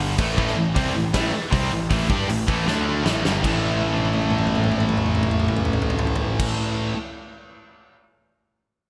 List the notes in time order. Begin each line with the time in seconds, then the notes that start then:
Already playing: G1 G2 D3 G3
0.17 A1 A2 E3 A3, kick, crash
0.37 A1 A2 E3 A3, kick
0.47 snare
0.56 A1 A2 E3
0.75 C2 C3 G3 C4, kick, open hi-hat
0.95 A1 A2 E3
1.14 A1 A2 E3 A3, kick, snare, open hi-hat
1.32 muted distorted electric guitar stroke, muted overdriven electric guitar stroke, muted picked electric bass stroke
1.51 C2 C3 G3 C4, kick, open hi-hat
1.71 A1 A2 E3
1.90 A1 A2 E3 A3, kick, open hi-hat
2.09 G2 G3 D4 G4, kick
2.29 A1 A2 E3, open hi-hat
2.47 A1 A2 E3 A3, kick
2.67 D2 D3 A3 D4, snare
3.04 A1 A2 E3 A3, snare
3.24 G1 G2 D3 G3, snare
3.43 A1 A2 E3 A3, kick, crash
3.64 high tom
3.71 high tom
3.80 high tom
3.88 high tom
3.97 high tom
4.05 high tom
4.13 high tom
4.22 high tom
4.30 mid tom
4.38 mid tom
4.47 mid tom
4.55 mid tom
4.64 mid tom
4.72 mid tom
4.80 mid tom
4.89 mid tom
4.97 mid tom
5.06 mid tom
5.15 mid tom
5.23 mid tom
5.31 mid tom
5.40 mid tom
5.48 mid tom
5.57 mid tom
5.65 floor tom
5.73 floor tom
5.82 floor tom
5.90 floor tom
5.99 floor tom
6.07 floor tom
6.16 floor tom
6.40 kick, crash